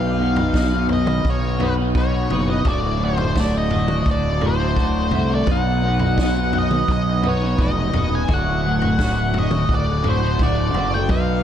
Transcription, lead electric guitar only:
0.00 0.86 F5 medium
0.93 1.27 D#5 medium
1.30 1.63 C#5 medium
1.65 1.73 B4 medium
1.98 2.50 C#5 medium
2.50 2.67 D#5 medium
2.68 3.03 D5 medium
3.05 3.39 C5 medium
3.41 3.56 D5 medium
3.58 4.10 D#5 medium
4.11 4.45 D5 medium
4.47 5.35 C5 medium
5.35 5.50 D5 medium
5.52 6.58 F#5 medium
6.58 6.91 D#5 medium
6.92 7.26 D#5 medium
7.29 7.62 C#5 medium
7.62 8.14 D#5 medium
8.15 8.34 G#5 medium
8.34 9.40 F#5 loud
9.39 9.72 D#5 medium
9.75 10.08 D5 medium
10.10 10.40 C5 medium
10.43 10.96 D5 medium
10.94 11.11 G5 medium
11.11 11.43 F5 medium

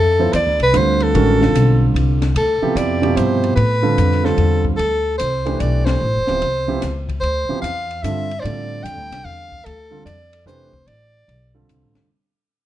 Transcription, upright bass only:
0.00 0.32 F2 medium
0.33 0.46 E2 medium
0.46 0.59 D2 medium
0.60 0.72 C2 medium
0.74 1.13 D2 medium
1.14 1.53 A1 medium
1.54 1.93 B1 medium
1.94 2.34 C2 medium
2.35 2.59 D2 medium
2.62 muted upright bass stroke soft
2.75 3.15 F2 medium
3.17 3.56 G2 medium
3.57 3.96 A2 medium
3.98 4.37 F2 medium
4.38 4.77 E2 medium
4.79 5.19 D2 medium
5.21 5.60 C2 medium
5.60 6.00 B1 medium
6.01 6.17 A1 medium
6.15 6.28 F1 medium
6.29 6.41 D1 medium
6.42 6.81 C2 medium
6.83 7.22 C#2 medium
7.22 7.47 D2 medium
7.49 muted upright bass stroke soft
7.62 8.02 E2 medium
8.03 8.43 G2 medium
8.44 8.83 A2 medium
8.84 8.97 F2 medium
8.97 9.11 D2 medium
9.11 9.24 C2 medium
9.24 9.64 E2 medium
9.66 10.05 D2 medium
10.05 10.45 F2 medium
10.46 10.86 F1 medium
10.87 11.27 A1 medium
11.28 11.68 B1 medium
11.69 11.83 C2 medium
11.83 11.95 A1 soft
11.96 12.08 F1 medium

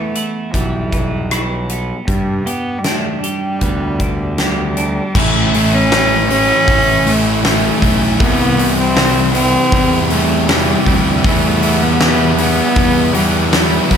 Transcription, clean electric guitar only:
0.00 0.92 E2 medium
0.00 0.54 G3 medium
0.00 0.92 B3 medium
0.00 0.15 E4 medium
0.16 1.31 E4 medium
0.55 2.08 G3 medium
0.93 1.69 B3 medium
1.32 2.08 E4 medium
1.70 2.08 B3 medium
2.08 4.00 G2 medium
2.46 3.22 G4 medium
2.85 3.99 D4 medium
3.24 4.37 G4 medium
3.63 5.15 B3 medium
4.01 4.76 D4 medium
4.38 5.15 G4 medium
4.77 5.15 D4 medium

